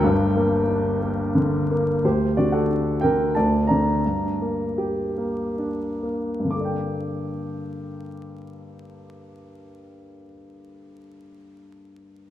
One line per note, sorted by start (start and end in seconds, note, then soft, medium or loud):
0.00 2.00 G1 medium
0.00 2.00 G2 medium
0.00 1.67 A#4 medium
0.00 1.67 G5 medium
0.36 1.00 A#3 soft
0.69 2.01 D4 soft
1.02 1.70 A#3 medium
1.35 2.02 D3 medium
1.71 2.04 A#3 soft
2.04 3.32 D2 soft
2.04 2.36 G4 soft
2.04 2.39 C5 medium
2.37 3.03 D3 soft
2.37 2.53 F#4 soft
2.37 2.53 D5 medium
2.52 2.99 A4 soft
2.52 3.04 F#5 medium
2.70 3.34 D4 soft
3.01 3.35 D3 soft
3.01 3.34 A#4 medium
3.01 3.36 G5 medium
3.35 4.03 D2 soft
3.35 3.67 D5 medium
3.35 3.70 A5 medium
3.67 4.04 D3 soft
3.67 5.99 D5 soft
3.67 5.98 A#5 medium
4.06 6.38 G2 soft
4.41 5.16 A#3 soft
4.78 6.48 G4 soft
5.18 6.01 A#3 soft
5.59 6.50 D4 soft
6.03 6.49 A#3 soft
6.40 10.14 G2 soft
6.45 10.20 D3 soft
6.50 10.25 A#3 soft
6.50 10.25 D6 soft
6.56 10.30 A4 soft
6.61 10.35 D5 soft
6.65 10.40 G5 soft